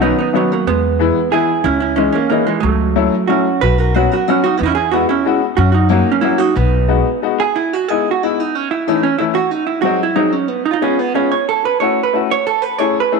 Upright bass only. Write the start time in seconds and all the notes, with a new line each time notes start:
Already playing: B1
0.67 E2
1.64 C#2
2.63 C#2
3.62 B1
4.61 E2
5.58 F#2
6.56 B1